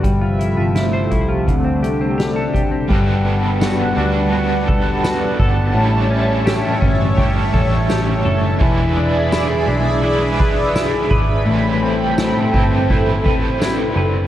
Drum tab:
CC |--------|x-------|--------|--------|
RD |--------|--x-x-x-|x-x-x-x-|x-x-x---|
HH |xxxxxxxx|--------|--------|--------|
TB |--------|--x---x-|--x---x-|--x---x-|
SD |--o---o-|--o---o-|--o---o-|--o---o-|
BD |o--oo--o|o----o-o|---ooo--|o----o-o|

CC |--------|
RD |x-x-x-x-|
HH |--------|
TB |--x---x-|
SD |--o---o-|
BD |---ooo--|